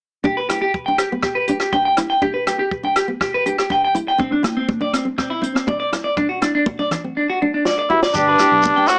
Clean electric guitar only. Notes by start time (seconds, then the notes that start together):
0.25 G4
0.37 B4
0.49 G4
0.62 G4
0.86 G5
0.98 G4
1.23 G4
1.35 B4
1.48 G4
1.60 G4
1.73 G5
1.85 G5
2.10 G5
2.22 G4
2.34 B4
2.47 G4
2.59 G4
2.85 G5
2.96 G4
3.21 G4
3.34 B4
3.46 G4
3.59 G4
3.72 G5
3.85 G5
4.08 G5
4.20 C4
4.32 D4
4.57 C4
4.82 D5
4.93 C4
5.18 C4
5.30 E4
5.42 C4
5.55 C4
5.68 D5
5.80 D5
6.04 D5
6.17 D4
6.29 F#4
6.42 D4
6.55 D4
6.79 D5
6.93 muted clean electric guitar stroke
7.17 D4
7.30 F#4
7.42 D4
7.54 D4
7.67 D5
7.79 D5
8.03 D5
8.15 G4
8.28 B4
8.40 G4
8.76 G5